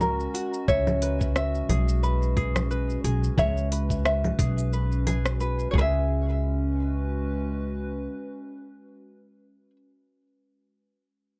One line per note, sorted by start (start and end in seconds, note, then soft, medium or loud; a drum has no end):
0.00 0.26 C#2 medium
0.00 5.73 G#3 medium
0.00 5.74 C#4 medium
0.00 0.34 F#4 medium
0.00 5.74 F#4 medium
0.00 0.68 A#4 medium
0.00 0.68 D#5 medium
0.00 0.68 A#5 medium
0.00 low conga medium
0.00 shaker medium
0.20 shaker soft
0.34 0.76 F#4 medium
0.34 open hi-hat medium
0.54 shaker medium
0.68 1.61 C#2 medium
0.68 2.03 C#5 medium
0.68 1.35 E5 medium
0.68 kick loud
0.68 shaker soft
0.87 low conga medium
0.87 shaker soft
1.02 2.03 B4 medium
1.02 open hi-hat medium
1.21 kick loud
1.21 shaker medium
1.36 3.39 E5 medium
1.36 cross-stick medium
1.36 shaker medium
1.55 shaker soft
1.69 2.95 B1 medium
1.69 2.36 G#4 medium
1.69 open hi-hat medium
1.69 low conga medium
1.89 shaker medium
2.03 2.71 B4 medium
2.03 shaker medium
2.22 shaker soft
2.37 3.04 G#4 medium
2.37 kick loud
2.37 open hi-hat medium
2.56 cross-stick medium
2.56 low conga medium
2.56 shaker medium
2.71 3.04 B4 medium
2.71 shaker soft
2.90 shaker soft
3.04 3.27 B1 medium
3.04 3.38 G#4 medium
3.04 open hi-hat medium
3.12 5.74 B4 medium
3.24 shaker medium
3.38 4.30 C#2 loud
3.38 3.72 C#5 medium
3.38 4.05 E5 medium
3.38 kick loud
3.38 low conga medium
3.38 shaker medium
3.57 shaker soft
3.72 4.73 B4 medium
3.72 open hi-hat loud
3.90 kick medium
3.90 shaker medium
4.05 5.06 E5 medium
4.05 cross-stick medium
4.05 shaker medium
4.24 low conga medium
4.24 shaker soft
4.39 5.65 B1 medium
4.39 5.07 G#4 medium
4.39 kick loud
4.39 open hi-hat medium
4.58 shaker medium
4.73 5.40 B4 medium
4.73 shaker medium
4.92 shaker soft
5.07 5.75 G#4 medium
5.07 open hi-hat medium
5.07 low conga medium
5.26 cross-stick medium
5.26 shaker medium
5.40 5.71 B4 medium
5.40 shaker soft
5.59 shaker soft
5.71 8.06 C#2 loud
5.71 9.53 G#3 medium
5.71 5.78 C#5 medium
5.71 kick loud
5.75 9.70 G#4 medium
5.75 5.81 B4 loud
5.81 9.53 C#4 medium
5.81 9.76 E5 medium
6.30 9.53 F#4 medium
6.39 9.53 B4 medium